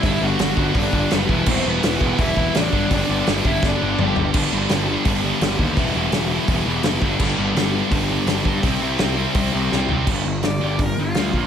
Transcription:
<<
  \new Staff \with { instrumentName = "Overdriven electric guitar" } { \time 4/4 \key g \major \tempo 4 = 167 <e' e''>8 <fis' fis''>4. <d' d''>4 <b b'>4 | <c' c''>8 <b b'>8 <b b'>4 <e' e''>4 <d' d''>4 | <d' d''>4 r8 <e' e''>8 <d' d''>4 <g' g''>8. r16 | r1 |
r1 | r1 | r1 | \key c \major r4 d''8 d''8 bes'8 f'4. | }
  \new Staff \with { instrumentName = "Distorted electric guitar" } { \clef bass \time 4/4 \key g \major <g, d g b d'>8 <g, d g b d'>8 <g, d g b d'>8 <g, d g b d'>8 <g, d g b d'>8 <g, d g b d'>8 <g, d g b d'>8 <e g b e'>8 | <e g b e'>8 <e g b e'>8 <e g b e'>8 <e g b e'>8 <e g b e'>8 <e g b e'>8 <e g b e'>8 <g, d g b d'>8 | <g, d g b d'>8 <g, d g b d'>8 <g, d g b d'>8 <g, d g b d'>8 <g, d g b d'>8 <g, d g b d'>8 <g, d g b d'>8 <g, d g b d'>8 | <g, d g b d'>8 <g, d g b d'>8 <g, d g b d'>8 <g, d g b d'>8 <g, d g b d'>8 <g, d g b d'>8 <g, d g b d'>8 <g, d g b d'>8 |
<e g b e'>8 <e g b e'>8 <e g b e'>8 <e g b e'>8 <e g b e'>8 <e g b e'>8 <e g b e'>8 <g, d g b d'>8 | <g, d g b d'>8 <g, d g b d'>8 <g, d g b d'>8 <g, d g b d'>8 <g, d g b d'>8 <g, d g b d'>8 <g, d g b d'>8 <g, d g b d'>8 | <c g c' e'>8 <c g c' e'>8 <c g c' e'>8 <c g c' e'>8 <c g c' e'>8 <c g c' e'>8 <c g c' e'>8 <c g c' e'>8 | \key c \major <g, d g>8 <g, d>8 <g, d>8 <g, d g>8 <g, d>8 <g, d>8 <g, d g>8 <bes, d f>8 | }
  \new Staff \with { instrumentName = "Distorted electric guitar" } { \clef bass \time 4/4 \key g \major <g, d g b d'>2.~ <g, d g b d'>8 <e g b e'>8~ | <e g b e'>2.~ <e g b e'>8 <g, d g b d'>8~ | <g, d g b d'>2.~ <g, d g b d'>8 r8 | <g, d g b d'>1 |
<e g b e'>2.~ <e g b e'>8 <g, d g b d'>8~ | <g, d g b d'>2.~ <g, d g b d'>8 r8 | <c g c' e'>1 | \key c \major r1 | }
  \new Staff \with { instrumentName = "Distorted electric guitar" } { \clef bass \time 4/4 \key g \major <g, d g>8 <g, d g>8 <g, d g>8 <g, d g>8 <g, d g>8 <g, d g>8 <g, d g>8 <e, b, e>8 | <e, b, e>8 <e, b, e>8 <e, b, e>8 <e, b, e>8 <e, b, e>8 <e, b, e>8 <e, b, e>8 <g, d g>8 | <g, d g>8 <g, d g>8 <g, d g>8 <g, d g>8 <g, d g>8 <g, d g>8 <g, d g>8 <g, d g>8 | <g, d g>8 <g, d g>8 <g, d g>8 <g, d g>8 <g, d g>8 <g, d g>8 <g, d g>8 <g, d g>8 |
<e, b, e>8 <e, b, e>8 <e, b, e>8 <e, b, e>8 <e, b, e>8 <e, b, e>8 <e, b, e>8 <g, d g>8 | <g, d g>8 <g, d g>8 <g, d g>8 <g, d g>8 <g, d g>8 <g, d g>8 <g, d g>8 <g, d g>8 | <c g c'>8 <c g c'>8 <c g c'>8 <c g c'>8 <c g c'>8 <c g c'>8 <c g c'>8 <c g c'>8 | \key c \major <g, d g>8 <g, d>8 <g, d>8 <g, d g>8 <g, d>8 <g, d>8 <g, d g>8 <bes, f bes>8 | }
  \new Staff \with { instrumentName = "Picked electric bass" } { \clef bass \time 4/4 \key g \major g,,8 g,,8 g,,8 g,,8 g,,8 g,,8 fis,,8 e,,8 | e,,8 e,,8 e,,8 e,,8 e,,8 e,,8 a,,8 g,,8 | g,,8 g,,8 g,,8 g,,8 g,,8 g,,8 g,,8 g,,8 | g,,8 g,,8 g,,4 g,,4 g,,8 ees,8 |
e,,8 e,,8 e,,4 e,,8 e,,8 fis,,8 g,,8 | g,,8 g,,8 g,,4 g,,4 g,,8 g,8 | c,8 c,8 c,4 c,8 c,8 c,8 c,8 | \key c \major g,,8 g,,8 g,,8 g,,8 g,,8 g,,8 d,8 bes,,8 | }
  \new DrumStaff \with { instrumentName = "Drums" } \drummode { \time 4/4 <hho bd>4 <hho sn>8 bd8 <hho bd>8 bd8 <hho sn>8 bd8 | <cymc bd>4 <hho sn>8 bd8 <hho bd>8 bd8 <hho sn>8 bd8 | <hho bd>4 <hho sn>8 bd8 <bd sn>4 toml8 tomfh8 | <cymc bd>4 <hho sn>4 <hho bd>4 <hho sn>8 bd8 |
<hho bd>4 <hho sn>4 <hho bd>4 <hho sn>8 bd8 | <cymc bd>4 <hho sn>4 <hho bd>4 <hho sn>8 bd8 | <hho bd>4 <hho sn>4 <hho bd>4 sn8 tomfh8 | <cymc bd>4 <hho sn>4 <hho bd>4 <hho sn>8 bd8 | }
>>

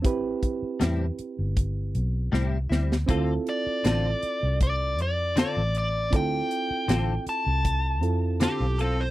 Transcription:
<<
  \new Staff \with { instrumentName = "Lead electric guitar" } { \time 4/4 \key d \dorian \tempo 4 = 79 a''8 r2. r8 | r8 d''4. d''8 d''8 d''8 d''8 | g''4. a''2~ a''8 | }
  \new Staff \with { instrumentName = "Electric slide guitar" } { \time 4/4 \key d \dorian r1 | r1 | r2. g'8 a'16 c''16 | }
  \new Staff \with { instrumentName = "Reed electric piano" } { \time 4/4 \key d \dorian <c' e' g' b'>1 | <c' e' f' a'>1 | <c' e' f' a'>2~ <c' e' f' a'>8 <c' e' f' a'>4. | }
  \new Staff \with { instrumentName = "Clean electric guitar" } { \time 4/4 \key d \dorian r4 <a, g c' e'>8 r4. <a, g c' e'>8 <g c' e'>8 | <d c' f' a'>8 r8 <d c' f' a'>8 r4. <d c' f' a'>8 r8 | r4 <d c' f' a'>8 r4. <d c' f' a'>8 <c' f' a'>8 | }
  \new Staff \with { instrumentName = "Fingered electric bass" } { \clef bass \time 4/4 \key d \dorian a,,8 r8 e,8 r16 g,,8. b,,8 c,8 d,8 | d,8 r8 a,,8 r16 c,8. f,8. a,,8. | d,8 r8 a,,8 r16 c,8. f,8. b,,8. | }
  \new DrumStaff \with { instrumentName = "Drums" } \drummode { \time 4/4 <hh bd>8 <hh bd>8 <hh sn>8 hh8 <hh bd>8 hh8 sn8 sn16 sn16 | <hh bd>8 hh8 <hh sn>8 hh8 <hh bd>8 hh8 <hh sn>8 hh8 | <hh bd>8 hh8 <hh sn>8 hh8 <hh bd>8 hh8 <hh sn>8 hh8 | }
>>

